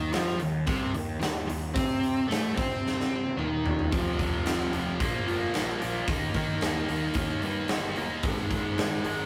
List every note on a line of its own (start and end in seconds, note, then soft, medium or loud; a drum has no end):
0.00 0.11 D#2 medium
0.00 0.12 D#3 loud
0.13 0.39 F2 loud
0.13 0.39 F3 loud
0.13 snare loud
0.13 open hi-hat medium
0.28 snare soft
0.40 0.66 D#2 medium
0.40 0.62 D#3 medium
0.40 open hi-hat medium
0.67 0.92 C2 medium
0.67 0.93 C3 loud
0.67 kick loud
0.67 open hi-hat medium
0.94 1.20 D#2 medium
0.94 1.16 D#3 medium
0.94 open hi-hat medium
1.20 1.47 D#2 medium
1.20 1.43 D#3 medium
1.20 snare loud
1.20 open hi-hat medium
1.48 1.74 D#2 medium
1.48 1.70 D#3 medium
1.48 open hi-hat medium
1.74 2.26 C3 loud
1.74 2.28 C4 loud
1.74 kick loud
1.74 open hi-hat medium
2.03 open hi-hat medium
2.28 2.55 A2 medium
2.28 2.55 A3 loud
2.28 snare loud
2.28 open hi-hat medium
2.56 3.34 C3 medium
2.56 3.36 C4 medium
2.56 kick loud
2.56 open hi-hat medium
2.87 snare medium
3.00 snare medium
3.26 high tom medium
3.37 3.87 D#2 medium
3.37 3.90 D#3 loud
3.37 mid tom medium
3.66 floor tom loud
3.79 floor tom medium
3.91 4.11 F1 medium
3.91 4.17 F2 medium
3.91 4.17 C3 medium
3.91 4.18 F3 loud
3.91 kick loud
3.91 open hi-hat medium
4.18 4.38 F1 medium
4.18 4.43 F2 medium
4.18 4.44 C3 medium
4.18 4.45 F3 loud
4.18 kick medium
4.18 open hi-hat medium
4.45 4.64 F1 medium
4.45 4.71 F2 medium
4.45 4.72 C3 medium
4.45 4.72 F3 loud
4.45 snare loud
4.45 open hi-hat medium
4.72 4.91 F1 medium
4.72 4.98 F2 medium
4.72 4.98 C3 medium
4.72 4.98 F3 medium
4.72 open hi-hat medium
4.99 5.18 A#1 medium
4.99 5.26 A#2 medium
4.99 5.27 F3 loud
4.99 5.27 A#3 loud
4.99 kick loud
4.99 open hi-hat medium
5.27 5.46 F1 medium
5.27 5.53 A#2 medium
5.27 5.53 F3 medium
5.27 5.54 A#3 medium
5.27 open hi-hat medium
5.54 5.73 A#1 medium
5.54 5.79 A#2 medium
5.54 5.80 F3 medium
5.54 5.81 A#3 loud
5.54 snare loud
5.54 open hi-hat medium
5.81 6.00 A#1 medium
5.81 6.06 A#2 medium
5.81 6.06 F3 medium
5.81 6.07 A#3 medium
5.81 open hi-hat medium
6.07 6.26 D#2 medium
6.07 6.34 D#3 medium
6.07 6.35 A#3 loud
6.07 6.36 D#4 loud
6.07 kick loud
6.07 open hi-hat medium
6.34 6.53 D#3 medium
6.34 6.61 D#3 medium
6.34 6.62 A#3 medium
6.34 6.64 D#4 loud
6.34 kick medium
6.34 open hi-hat medium
6.61 6.80 D#2 medium
6.61 6.88 D#3 loud
6.61 6.88 A#3 loud
6.61 6.90 D#4 loud
6.61 snare loud
6.61 open hi-hat medium
6.89 7.07 D#2 medium
6.89 7.14 D#3 medium
6.89 7.14 A#3 medium
6.89 7.15 D#4 medium
6.89 open hi-hat medium
7.14 7.34 D#2 medium
7.14 7.41 D#3 medium
7.14 7.42 A#3 loud
7.14 7.42 D#4 medium
7.14 kick loud
7.14 open hi-hat medium
7.42 7.61 G2 medium
7.42 7.68 D#3 medium
7.42 7.69 A#3 medium
7.42 7.70 D#4 medium
7.42 open hi-hat medium
7.68 8.06 G1 medium
7.68 7.95 D#3 medium
7.68 7.96 A#3 loud
7.68 7.96 D#4 loud
7.68 snare loud
7.68 open hi-hat medium
7.96 8.22 D#3 medium
7.96 8.22 A#3 medium
7.96 8.22 D#4 medium
7.96 open hi-hat medium
8.23 8.42 G#1 loud
8.23 8.49 G#2 loud
8.23 8.50 D#3 loud
8.23 8.51 G#3 loud
8.23 kick loud
8.23 open hi-hat medium
8.50 8.69 G#1 medium
8.50 8.76 G#2 medium
8.50 8.77 D#3 medium
8.50 8.79 G#3 loud
8.50 kick medium
8.50 open hi-hat medium
8.77 8.96 G#1 medium
8.77 9.04 G#2 medium
8.77 9.04 D#3 loud
8.77 9.06 G#3 loud
8.77 snare loud
8.77 open hi-hat medium
9.04 9.23 G#1 medium
9.04 9.26 G#2 medium
9.04 9.26 D#3 medium
9.04 9.26 G#3 medium
9.04 open hi-hat medium